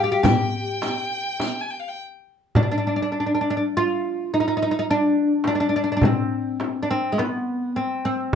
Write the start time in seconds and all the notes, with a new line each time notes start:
Already playing: F5
0.04 G4
0.12 G4
0.23 G4 G5, riq, darbuka dum, frame drum
0.82 riq, darbuka tek, frame drum
1.40 riq, darbuka tek, frame drum
1.61 G#5
1.71 G5
1.79 F5
1.88 G5
2.55 D4, darbuka dum, frame drum
2.63 D4
2.71 D4
2.78 D4
2.87 D4
2.96 D4
3.02 D4
3.12 D4
3.20 D4
3.26 D4
3.35 D4
3.41 D4
3.50 D4
3.57 D4
3.77 F4
4.34 D#4
4.40 D#4
4.48 D#4
4.57 D#4
4.62 D#4
4.71 D#4
4.79 D#4
4.91 D4
5.44 D4, darbuka tek, frame drum
5.55 D4
5.60 D4
5.69 D4
5.76 D4
5.84 D4
5.92 D4
5.97 D4
6.01 C4, darbuka dum, frame drum
6.60 darbuka tek, frame drum
6.83 D4
6.91 C4
7.12 G#3
7.18 B3, darbuka tek, frame drum
7.76 C4
8.05 C4